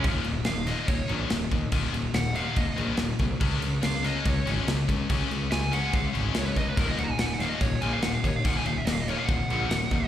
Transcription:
0.04 picked electric bass D#1, distorted electric guitar D#2 A#2 D#3, kick, crash
0.24 picked electric bass D#1, distorted electric guitar D#2 A#2, crash
0.45 picked electric bass D#1, distorted electric guitar D#2 A#2, lead electric guitar F5, snare, crash
0.67 distorted electric guitar D#2 A#2 D#3, lead electric guitar D#5, snare, crash
0.88 picked electric bass D#1, distorted electric guitar D#2 A#2, lead electric guitar C#5, kick, crash
1.08 picked electric bass A#1, distorted electric guitar D#2 A#2 D#3, crash
1.30 picked electric bass D#1, distorted electric guitar D#2 A#2, snare, crash
1.51 picked electric bass D#2, distorted electric guitar D#2 A#2, kick, crash
1.72 picked electric bass D#1, distorted electric guitar D#2 A#2 D#3, kick, crash
1.93 picked electric bass D#1, distorted electric guitar D#2 A#2, crash
2.14 picked electric bass D#1, distorted electric guitar D#2 A#2, lead electric guitar F#5, snare, crash
2.35 distorted electric guitar D#2 A#2 D#3, lead electric guitar F5, crash
2.55 picked electric bass D#1, distorted electric guitar D#2 A#2, lead electric guitar D#5, kick, crash
2.76 picked electric bass A#1, distorted electric guitar D#2 A#2 D#3, crash
2.97 picked electric bass D#1, distorted electric guitar D#2 A#2, snare, crash
3.19 picked electric bass C2, distorted electric guitar D#2 A#2, kick, crash
3.40 picked electric bass C#2, distorted electric guitar C#3 G#3 C#4, kick, crash
3.61 picked electric bass C#2, distorted electric guitar C#3 G#3, crash
3.82 picked electric bass C#2, distorted electric guitar C#3 G#3, lead electric guitar F5, snare, crash
4.03 distorted electric guitar C#3 G#3 C#4, lead electric guitar D#5, snare, crash
4.25 picked electric bass C#2, distorted electric guitar C#3 G#3, lead electric guitar C#5, kick, crash
4.45 picked electric bass G#1, distorted electric guitar C#3 G#3 C#4, crash
4.67 picked electric bass C#2, distorted electric guitar C#3 G#3, snare, crash
4.88 picked electric bass C#2, distorted electric guitar C#3 G#3, kick, crash
5.09 picked electric bass C#2, distorted electric guitar C#3 G#3 C#4, kick, crash
5.30 picked electric bass C#2, distorted electric guitar C#3 G#3, crash
5.51 picked electric bass C#2, distorted electric guitar C#3 G#3, lead electric guitar G#5, snare, crash
5.72 distorted electric guitar C#3 G#3 C#4, lead electric guitar F#5, crash
5.92 picked electric bass C#2, distorted electric guitar C#3 G#3, lead electric guitar F5, kick, crash
6.13 picked electric bass G#1, distorted electric guitar C#3 G#3 C#4, crash
6.34 picked electric bass C#2, distorted electric guitar C#3 G#3, lead electric guitar C#5, snare, crash
6.45 lead electric guitar B4
6.52 picked electric bass C#2, distorted electric guitar C#3, lead electric guitar C#5, kick, crash
6.57 distorted electric guitar G#3, lead electric guitar D#5
6.69 lead electric guitar B4
6.77 picked electric bass D#1, distorted electric guitar D#2 A#2 D#3, lead electric guitar A#4, kick, crash
6.87 lead electric guitar D#5
6.98 picked electric bass D#1, distorted electric guitar D#2 A#2, lead electric guitar F#5, crash
7.04 lead electric guitar A#5
7.11 lead electric guitar G#5
7.18 picked electric bass D#1, distorted electric guitar D#2, lead electric guitar F#5, snare, crash
7.22 distorted electric guitar A#2, lead electric guitar G#5
7.33 lead electric guitar F#5
7.40 distorted electric guitar D#2 A#2 D#3, lead electric guitar F5, snare, crash
7.49 lead electric guitar D#5
7.61 picked electric bass D#1, distorted electric guitar D#2 A#2, lead electric guitar C#5, kick, crash
7.81 picked electric bass A#1, distorted electric guitar D#2 A#2 D#3, lead electric guitar G#5, crash
7.93 lead electric guitar F5
8.02 picked electric bass D#1, distorted electric guitar D#2 A#2, lead electric guitar F#5, snare, crash
8.14 lead electric guitar F5
8.24 picked electric bass D#2, distorted electric guitar D#2 A#2, lead electric guitar C#5, kick, crash
8.36 lead electric guitar F5
8.44 picked electric bass D#1, distorted electric guitar D#2 A#2 D#3, lead electric guitar F#5, kick, crash
8.57 lead electric guitar G#5
8.66 picked electric bass D#1, distorted electric guitar D#2 A#2, lead electric guitar F5, crash
8.77 lead electric guitar E5
8.86 picked electric bass D#1, distorted electric guitar D#2 A#2, lead electric guitar D#5, snare, crash
8.93 lead electric guitar F5
9.02 lead electric guitar D#5
9.08 distorted electric guitar D#2 A#2 D#3, lead electric guitar C#5, crash
9.17 lead electric guitar F5
9.27 picked electric bass D#1, distorted electric guitar D#2 A#2, lead electric guitar F#5, kick, crash
9.50 picked electric bass A#1, distorted electric guitar D#2 A#2 D#3, crash
9.71 picked electric bass D#1, distorted electric guitar D#2 A#2, snare, crash
9.91 picked electric bass D#2, distorted electric guitar D#2 A#2, kick, crash

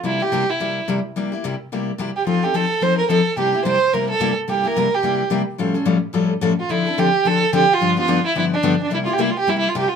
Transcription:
0.03 steel-string acoustic guitar C3 G3 A#3 E4 G4, violin E4
0.20 steel-string acoustic guitar A#3 E4 G4, violin G4
0.32 steel-string acoustic guitar C3 G3 A#3 E4 G4
0.50 violin E4
0.60 steel-string acoustic guitar C3 G3 A#3 E4 G4
0.88 steel-string acoustic guitar C3 G3 A#3 E4 G4
1.16 steel-string acoustic guitar C3 G3 A#3 E4 G4
1.32 steel-string acoustic guitar A#3 E4 G4
1.44 steel-string acoustic guitar C3 G3 A#3 E4 G4
1.72 steel-string acoustic guitar C3 G3 A#3 E4 G4
1.98 steel-string acoustic guitar C3 G3 A#3 E4 G4
2.16 violin G4
2.27 steel-string acoustic guitar F3 C4 D#4 A4, violin F4
2.43 steel-string acoustic guitar C4 D#4 A4, violin G4
2.54 steel-string acoustic guitar F3 C4 D#4 A4, violin A4
2.81 steel-string acoustic guitar F3 C4 D#4 A4, violin C5
2.98 violin A#4
3.09 steel-string acoustic guitar F3 C4 D#4 A4, violin A4
3.37 steel-string acoustic guitar C3 G3 A#3 E4 G4, violin G4
3.53 steel-string acoustic guitar A#3 E4 G4
3.65 steel-string acoustic guitar C3 G3 A#3 E4 G4, violin C5
3.93 steel-string acoustic guitar C3 G3 A#3 E4 G4, violin A#4
4.10 violin A4
4.20 steel-string acoustic guitar C3 G3 A#3 E4 G4
4.48 steel-string acoustic guitar C3 G3 A#3 E4 G4, violin G4
4.64 steel-string acoustic guitar A#3 E4 G4, violin A#4
4.76 steel-string acoustic guitar C3 G3 A#3 E4 G4
4.95 violin G4
5.03 steel-string acoustic guitar C3 G3 A#3 E4 G4
5.30 steel-string acoustic guitar C3 G3 A#3 E4 G4
5.58 steel-string acoustic guitar A2 F3 G3 C#4 F4 A4
5.74 steel-string acoustic guitar G3 C#4 F4 A4
5.85 steel-string acoustic guitar A2 F3 G3 C#4 F4 A4
6.13 steel-string acoustic guitar A2 F3 G3 C#4 F4 A4
6.41 steel-string acoustic guitar A2 F3 G3 C#4 F4 A4
6.60 violin F4
6.69 steel-string acoustic guitar D3 F3 C4 D4 A4, violin E4
6.87 steel-string acoustic guitar C4 D4 A4
6.98 steel-string acoustic guitar D3 F3 C4 D4 A4, violin G4
7.25 steel-string acoustic guitar D3 F3 C4 D4 A4, violin A4
7.53 steel-string acoustic guitar D3 F3 C4 D4 A4, violin G4
7.73 violin F4
7.81 steel-string acoustic guitar G2 D3 F3 B3 D4 G4
7.96 steel-string acoustic guitar F3 B3 D4 G4, violin F4
8.08 steel-string acoustic guitar G2 D3 F3 B3 D4 G4
8.26 violin E4
8.35 steel-string acoustic guitar G2 D3 F3 B3 D4 G4, violin E4
8.54 violin D4
8.63 steel-string acoustic guitar G2 D3 F3 B3 D4 G4
8.83 violin D4
8.90 steel-string acoustic guitar C3 G3 A#3 E4 G4
8.94 violin E4
9.05 steel-string acoustic guitar A#3 E4 G4, violin F4
9.13 violin G4
9.18 steel-string acoustic guitar C3 G3 A#3 E4 G4, violin E4
9.30 violin F4
9.39 violin G4
9.47 steel-string acoustic guitar C3 G3 A#3 E4 G4, violin E4
9.59 violin E4
9.69 violin F4
9.75 steel-string acoustic guitar C3 G3 A#3 E4 G4, violin G4
9.88 violin F4

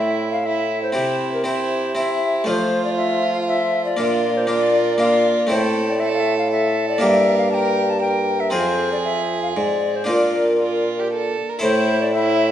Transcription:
Already playing: harpsichord A2 C4 E4, bassoon A2, violin E4, recorder E5
0.32 recorder F5
0.45 violin E4, recorder E5
0.83 recorder C5
0.92 harpsichord C3 C4 E4, bassoon C3, violin E4
1.34 recorder A#4
1.44 harpsichord C4 E4, recorder C5
1.49 violin E4
1.95 harpsichord C4 E4, recorder E5
1.99 violin E4
2.44 harpsichord F3 A3 F4, bassoon F3, recorder D5
2.49 violin F4, recorder C5
2.85 recorder D5
2.97 recorder E5
3.34 recorder F5
3.47 recorder E5
3.85 recorder D5
3.97 bassoon A#2, harpsichord A#2 A#3 D4
4.01 violin F4
4.37 recorder C5
4.47 harpsichord A#3 D4, violin F4, recorder D5
4.98 harpsichord A#3 D4, violin F4, recorder F5
5.47 harpsichord A2 A3 C4 E4, violin A4, recorder C5
5.51 bassoon A2
5.90 recorder D5
6.00 violin A4, recorder E5
6.09 recorder D5
6.15 recorder F5
6.20 recorder E5
6.38 recorder F5
6.51 violin A4, recorder E5
6.89 recorder D5
6.98 harpsichord G2 A#3 D4 G4, violin A#4, recorder F5
7.02 bassoon G2, recorder E5
7.38 recorder F5
7.51 violin A#4, recorder G5 A5
7.90 recorder A5
8.01 violin A#4, recorder G5
8.40 recorder E5
8.50 harpsichord F2 C4 F4 G#4, bassoon F2, violin G#4, recorder C5
8.92 recorder D5
9.05 recorder E5
9.42 recorder F5
9.56 bassoon G#2, harpsichord G#2, recorder D5
9.96 recorder C5
10.04 harpsichord A#3 D4 F4, violin F4, recorder C5
10.09 harpsichord A#2, bassoon A#2, recorder A#4
10.60 violin F4
10.99 violin G4
11.13 violin A4
11.49 violin A#4
11.59 harpsichord A2 E4 A4 C5, violin E4, recorder C5
11.64 bassoon A2
12.02 recorder D5
12.14 violin E4, recorder E5

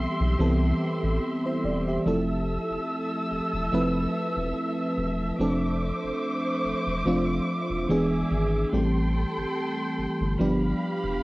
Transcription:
Already playing: fm electric piano E3 G3 B3 C4 G4 A4, string section G4 E5 C6
0.20 analog synth bass B1
0.39 analog synth bass C2, fm electric piano E3 G3 B3 C4 A4
1.03 analog synth bass A1
1.46 fm electric piano E4 C5
1.64 analog synth bass E1, fm electric piano D5
1.88 fm electric piano G4 E5
2.06 analog synth bass F1, fm electric piano F3 A3 C4 E4 A4, string section A4 E5 E6
2.70 analog synth bass E1
3.31 analog synth bass E1
3.53 analog synth bass E1
3.72 analog synth bass F1, fm electric piano F3 A3 C4 E4 B4
4.37 analog synth bass E1
4.98 analog synth bass E1
5.39 analog synth bass F1, fm electric piano F3 A3 C4 D4 A4, string section C5 D6
6.04 analog synth bass E1
6.64 analog synth bass E1
6.87 analog synth bass E1
7.06 analog synth bass F1, fm electric piano F3 A3 C4 D4 F4
7.70 analog synth bass E1
7.89 analog synth bass E1, fm electric piano E3 G#3 B3 D4 G#4, string section G#4 E5
8.31 analog synth bass G#1
8.72 analog synth bass A1, fm electric piano E3 G3 A3 C4 G4, string section A4 G5 C6
9.37 analog synth bass G1
9.98 analog synth bass G1
10.21 analog synth bass G1
10.39 analog synth bass G1, fm electric piano F3 G3 B3 D4 G4, string section G4 F5 B5
11.04 analog synth bass E1

